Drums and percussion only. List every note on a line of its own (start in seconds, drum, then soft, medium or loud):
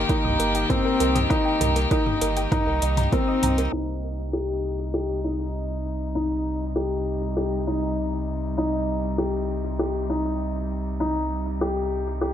0.09 kick medium
0.09 closed hi-hat soft
0.25 mid tom medium
0.40 closed hi-hat medium
0.55 closed hi-hat soft
0.70 kick medium
0.70 closed hi-hat soft
0.70 mid tom medium
1.00 closed hi-hat medium
1.16 closed hi-hat soft
1.16 mid tom medium
1.31 kick medium
1.31 closed hi-hat soft
1.61 closed hi-hat medium
1.61 mid tom medium
1.76 closed hi-hat soft
1.91 kick loud
1.91 closed hi-hat soft
2.06 mid tom medium
2.21 closed hi-hat medium
2.37 closed hi-hat soft
2.52 kick medium
2.52 closed hi-hat soft
2.52 mid tom medium
2.82 closed hi-hat medium
2.97 closed hi-hat soft
2.97 mid tom medium
3.12 kick medium
3.12 closed hi-hat soft
3.43 closed hi-hat medium
3.43 mid tom medium
3.58 closed hi-hat soft
3.73 crash medium